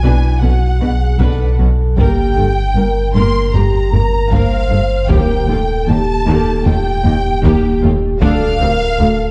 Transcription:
0.00 2.00 B1 medium
0.00 0.11 B1 medium
0.00 0.12 B2 medium
0.00 0.39 D4 medium
0.00 0.41 E4 soft
0.00 0.39 B4 medium
0.00 0.42 G#5 medium
0.00 0.43 G#5 medium
0.41 0.51 B1 soft
0.41 0.50 B2 soft
0.41 0.49 C#4 soft
0.41 0.81 F#4 medium
0.41 0.50 A4 soft
0.41 1.57 F#5 medium
0.41 1.59 F#5 medium
0.81 0.89 B1 soft
0.81 0.89 B2 soft
0.81 0.89 D4 soft
0.81 1.21 G#4 medium
0.81 0.89 B4 soft
1.20 1.28 B1 medium
1.20 1.28 B2 medium
1.20 1.56 D4 medium
1.20 1.97 A4 medium
1.20 1.56 B4 medium
1.20 taiko medium
1.59 1.67 B1 medium
1.59 1.67 B2 soft
1.59 1.67 C#4 medium
1.59 1.67 A4 soft
1.98 2.06 G1 medium
1.98 5.12 G1 medium
1.98 2.06 G2 medium
1.98 2.34 A#3 medium
1.98 2.59 G4 medium
1.98 2.34 A#4 medium
1.98 3.11 G5 medium
1.98 taiko medium
2.37 2.45 G1 soft
2.37 2.45 G2 soft
2.37 2.45 A3 soft
2.37 2.45 A4 soft
2.76 2.84 G1 soft
2.76 2.84 G2 soft
2.76 2.85 A#3 soft
2.76 3.13 A#4 medium
2.76 2.85 A#4 soft
3.14 3.23 G1 medium
3.14 3.22 G2 medium
3.14 3.51 A#3 medium
3.14 3.54 A#4 medium
3.14 3.51 A#4 medium
3.14 3.54 C6 medium
3.14 3.53 C6 medium
3.52 3.62 G1 soft
3.52 3.62 G2 medium
3.52 3.62 A3 medium
3.52 3.93 G4 medium
3.52 3.62 G4 soft
3.52 4.30 A#5 medium
3.52 4.32 A#5 medium
3.52 taiko low medium
3.93 4.01 G1 soft
3.93 4.01 G2 medium
3.93 4.01 A#3 medium
3.93 4.32 A#4 medium
3.93 4.01 A#4 soft
3.93 taiko low soft
4.31 4.40 G1 medium
4.31 4.39 G2 medium
4.31 4.69 A#3 medium
4.31 4.69 A#4 medium
4.31 5.10 C5 medium
4.31 5.10 F5 medium
4.31 taiko medium
4.71 4.79 G1 medium
4.71 4.79 G2 medium
4.71 4.79 A3 medium
4.71 4.80 A4 medium
5.10 8.24 D#1 medium
5.10 5.18 D#2 medium
5.10 5.46 A#3 medium
5.10 5.46 G4 medium
5.10 5.49 A#4 medium
5.10 5.88 G5 medium
5.10 taiko loud
5.49 5.57 D#2 medium
5.49 5.58 A3 soft
5.49 5.58 F4 medium
5.49 5.87 A4 medium
5.88 5.96 D#2 medium
5.88 5.97 D#2 medium
5.88 5.96 A#3 soft
5.88 5.96 G4 medium
5.88 6.27 G4 medium
5.88 6.66 A5 medium
6.27 6.35 D#2 medium
6.27 6.63 A#3 medium
6.27 6.63 G4 medium
6.27 6.66 A4 medium
6.66 6.74 D#2 medium
6.66 6.74 A3 medium
6.66 6.74 F4 medium
6.66 7.05 G4 medium
6.66 7.80 G5 medium
6.66 7.84 G5 medium
6.66 taiko low medium
7.04 7.12 D#2 medium
7.04 7.13 D#2 medium
7.04 7.13 A#3 medium
7.04 7.13 G4 medium
7.04 8.20 G4 medium
7.04 taiko low soft
7.43 7.51 D#2 medium
7.43 7.52 D#2 medium
7.43 7.80 A#3 medium
7.43 7.80 G4 medium
7.43 taiko medium
7.82 7.90 D#2 medium
7.82 7.91 D#2 medium
7.82 7.90 A3 medium
7.82 7.90 F4 medium
8.21 9.31 D1 medium
8.21 8.29 D2 medium
8.21 8.30 D2 medium
8.21 8.58 D4 medium
8.21 8.58 A4 medium
8.21 8.60 A4 medium
8.21 9.31 F5 loud
8.21 taiko loud
8.61 8.69 D2 medium
8.61 8.69 C4 medium
8.61 8.69 G4 medium
8.61 8.99 A#4 medium
8.99 9.08 D2 medium
8.99 9.07 D4 medium
8.99 9.07 A4 medium
8.99 9.31 A4 medium

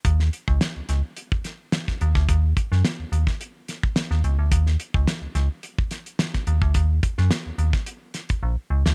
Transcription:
0.05 0.29 D#2 medium
0.05 kick medium
0.05 closed hi-hat medium
0.20 snare soft
0.33 closed hi-hat medium
0.48 0.59 C#2 medium
0.48 kick medium
0.61 snare loud
0.61 closed hi-hat medium
0.76 0.81 C#2 soft
0.89 1.02 C#2 medium
0.89 snare soft
0.89 closed hi-hat medium
1.17 closed hi-hat medium
1.32 kick medium
1.44 snare soft
1.44 closed hi-hat medium
1.72 snare loud
1.72 closed hi-hat medium
1.88 kick medium
1.88 snare soft
2.01 2.14 D#2 loud
2.01 closed hi-hat medium
2.15 2.27 D2 medium
2.15 kick medium
2.15 snare soft
2.29 2.53 D#2 medium
2.29 kick medium
2.29 closed hi-hat loud
2.57 kick medium
2.57 closed hi-hat medium
2.72 2.83 F#2 medium
2.72 snare soft
2.85 snare loud
2.85 closed hi-hat medium
2.99 3.05 D#2 soft
3.12 3.25 D#2 medium
3.12 closed hi-hat medium
3.27 kick medium
3.27 snare soft
3.41 closed hi-hat medium
3.68 snare soft
3.68 closed hi-hat medium
3.83 kick medium
3.96 snare loud
3.96 closed hi-hat medium
4.11 4.23 D#2 medium
4.11 snare soft
4.24 4.37 C#2 loud
4.24 closed hi-hat medium
4.39 4.50 D2 medium
4.51 4.76 D#2 medium
4.51 kick medium
4.51 closed hi-hat loud
4.67 snare soft
4.80 closed hi-hat medium
4.94 5.06 C#2 medium
4.94 kick medium
5.07 snare loud
5.07 closed hi-hat medium
5.22 5.27 C#2 soft
5.35 5.49 C#2 loud
5.35 snare soft
5.35 closed hi-hat medium
5.63 closed hi-hat medium
5.78 kick medium
5.91 snare soft
5.91 closed hi-hat medium
6.06 closed hi-hat soft
6.19 snare loud
6.19 closed hi-hat medium
6.34 kick medium
6.34 snare soft
6.34 closed hi-hat soft
6.47 6.61 D#2 medium
6.47 closed hi-hat medium
6.62 6.74 D2 medium
6.62 kick medium
6.74 7.00 D#2 medium
6.74 kick medium
6.74 closed hi-hat medium
7.03 kick medium
7.03 closed hi-hat medium
7.18 7.30 F#2 loud
7.18 snare soft
7.31 snare loud
7.31 closed hi-hat medium
7.46 7.51 D#2 soft
7.58 7.72 D#2 medium
7.58 closed hi-hat medium
7.73 kick medium
7.73 snare soft
7.86 closed hi-hat medium
8.14 snare soft
8.14 closed hi-hat medium
8.29 kick medium
8.29 closed hi-hat soft
8.43 8.56 A#1 medium
8.70 8.84 C#2 medium
8.86 8.95 D2 medium
8.86 snare medium

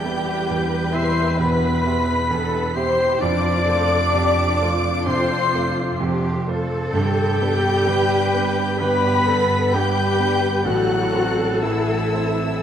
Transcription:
0.00 0.50 E1 medium
0.00 0.49 E2 medium
0.00 3.17 E2 loud
0.00 3.26 E2 medium
0.00 0.92 G3 loud
0.00 3.26 G3 medium
0.00 0.19 E4 medium
0.00 0.93 G4 loud
0.00 0.95 G4 loud
0.00 2.30 B4 loud
0.00 0.90 G5 loud
0.00 0.94 G5 loud
0.00 0.91 G6 loud
0.05 0.45 B3 medium
0.05 0.46 G4 medium
0.05 0.46 E5 medium
0.20 1.99 E4 medium
0.49 0.93 E1 medium
0.49 0.92 E2 medium
0.49 1.08 G4 medium
0.91 1.35 B2 medium
0.91 1.38 E4 loud
0.91 1.35 G4 medium
0.91 1.39 C5 loud
0.91 1.37 E5 loud
0.91 1.38 C6 loud
0.91 1.39 C6 loud
0.91 1.38 C7 loud
0.96 1.36 E5 medium
1.09 2.30 G4 medium
1.38 1.83 E1 medium
1.38 1.83 E2 medium
1.38 3.26 B2 medium
1.38 2.58 B3 loud
1.38 2.76 B4 medium
1.38 2.77 B4 loud
1.38 2.73 B5 loud
1.38 2.76 B5 loud
1.38 2.76 B6 loud
1.85 2.27 B3 medium
1.85 2.27 G4 medium
1.85 2.27 E5 medium
2.00 3.26 E4 medium
2.30 2.75 E1 medium
2.30 2.75 E2 medium
2.30 2.91 G4 medium
2.30 2.76 A4 loud
2.74 3.18 B2 medium
2.74 3.21 G4 loud
2.74 3.18 G4 medium
2.74 3.20 C5 loud
2.74 3.21 C5 loud
2.74 3.18 E5 medium
2.74 3.22 C6 loud
2.74 3.23 C6 loud
2.74 3.21 C7 loud
2.92 3.26 G4 medium
3.19 3.67 F1 medium
3.19 6.89 F2 loud
3.19 3.67 F2 medium
3.19 6.98 F2 medium
3.19 5.06 D4 loud
3.19 3.67 F4 loud
3.19 5.06 D5 loud
3.19 4.76 D5 loud
3.19 5.06 D6 loud
3.19 5.03 D6 loud
3.19 5.02 D7 loud
3.54 5.36 A3 medium
3.68 4.11 A3 medium
3.68 4.11 F4 medium
3.68 4.14 A4 loud
3.68 4.11 C5 medium
3.85 4.44 C4 medium
4.13 4.59 F1 medium
4.13 4.59 F2 medium
4.13 4.59 G4 loud
4.13 4.75 A4 medium
4.46 5.67 C4 medium
4.61 5.03 A3 medium
4.61 6.00 F4 loud
4.61 5.03 F4 medium
4.61 5.04 C5 medium
4.76 5.98 A4 medium
5.05 5.52 F1 medium
5.05 5.52 F2 medium
5.05 6.97 C3 medium
5.05 5.99 C4 loud
5.05 5.99 C5 loud
5.05 5.96 C5 loud
5.05 5.97 C6 loud
5.05 6.00 C6 loud
5.05 6.00 C7 loud
5.37 6.97 A3 medium
5.55 5.97 A3 medium
5.55 5.97 F4 medium
5.55 5.97 C5 medium
5.69 6.29 C4 medium
5.99 6.45 F1 medium
5.99 6.45 F2 medium
5.99 6.47 G4 loud
5.99 6.61 A4 medium
6.30 6.97 C4 medium
6.46 6.90 A3 medium
6.46 6.90 F4 medium
6.46 7.86 A4 loud
6.46 6.90 C5 medium
6.62 6.97 A4 medium
6.92 7.39 G1 medium
6.92 10.62 G2 loud
6.92 10.70 G2 medium
6.92 7.39 G2 loud
6.92 8.76 G3 loud
6.92 8.75 G4 loud
6.92 8.81 G4 loud
6.92 8.77 G5 loud
6.92 8.77 G6 loud
7.24 9.11 G3 medium
7.41 7.83 B3 medium
7.41 7.83 D4 medium
7.41 7.83 B4 medium
7.56 9.43 B3 medium
7.86 8.32 G1 medium
7.86 8.32 G2 medium
7.86 8.80 B4 loud
7.86 8.49 B4 medium
8.18 10.05 G4 medium
8.34 8.77 B3 medium
8.34 8.77 D4 medium
8.34 8.77 B4 medium
8.50 9.73 B4 medium
8.79 9.26 G1 medium
8.79 9.26 G2 medium
8.79 10.70 D3 medium
8.79 9.72 B3 loud
8.79 9.27 G4 loud
8.79 9.76 B4 loud
8.79 9.74 B4 loud
8.79 9.74 B5 loud
8.79 9.74 B6 loud
9.12 10.71 G3 medium
9.28 9.70 B3 medium
9.28 9.70 D4 medium
9.28 9.74 A4 loud
9.28 9.70 B4 medium
9.44 10.71 B3 medium
9.73 10.19 G1 medium
9.73 10.19 G2 medium
9.73 10.66 G3 loud
9.73 10.67 G4 loud
9.73 10.69 G4 loud
9.73 10.67 B4 loud
9.73 10.66 G5 loud
9.73 10.67 G6 loud
10.06 10.71 G4 medium
10.20 10.62 B3 medium
10.20 10.62 D4 medium
10.20 10.62 B4 medium
10.37 10.71 B4 medium
10.65 11.12 A1 medium
10.65 12.62 A1 loud
10.65 11.12 A2 medium
10.65 12.62 A2 loud
10.65 11.60 F#3 loud
10.65 11.60 F#4 loud
10.65 11.62 F#4 loud
10.65 12.62 A4 loud
10.65 11.60 F#5 loud
10.65 11.63 F#5 loud
10.65 11.63 F#6 loud
10.99 12.62 C4 medium
11.12 11.58 A3 medium
11.12 11.58 C4 medium
11.12 11.58 C5 medium
11.31 12.62 E4 medium
11.61 12.12 A1 medium
11.61 12.12 A2 medium
11.61 12.62 E3 medium
11.61 12.62 E4 loud
11.61 12.31 A4 medium
11.61 12.62 E5 loud
11.61 12.62 E5 medium
11.61 12.62 E6 loud
11.98 12.62 C5 medium
12.13 12.62 A3 medium
12.13 12.62 C4 medium
12.13 12.62 C5 medium
12.32 12.62 A4 medium

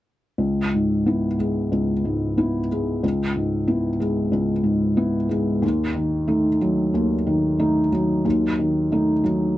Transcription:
0.38 1.68 C#2 soft
0.74 1.27 G#2 soft
1.06 1.36 B3 soft
1.06 1.37 E4 soft
1.39 1.92 G#3 soft
1.72 2.98 C#2 soft
2.05 2.58 G#2 soft
2.37 2.67 B3 soft
2.37 2.67 E4 soft
2.72 3.22 G#3 soft
3.03 4.29 C#2 soft
3.36 3.87 G#2 soft
3.68 3.97 B3 soft
3.68 3.97 E4 soft
4.00 4.52 G#3 soft
4.32 5.59 C#2 soft
4.64 5.17 G#2 soft
4.97 5.27 B3 soft
4.97 5.27 E4 soft
5.29 5.62 G#3 soft
5.62 6.90 D#2 medium
5.95 6.47 D#3 soft
6.28 6.57 A3 soft
6.28 6.58 D#4 soft
6.61 7.14 F#3 soft
6.94 8.21 D#2 soft
7.27 7.79 D#3 soft
7.59 7.89 A3 soft
7.59 7.89 D#4 soft
7.92 8.45 F#3 soft
8.25 9.55 D#2 soft
8.59 9.12 D#3 soft
8.92 9.22 A3 soft
8.92 9.22 D#4 soft
9.24 9.58 F#3 soft

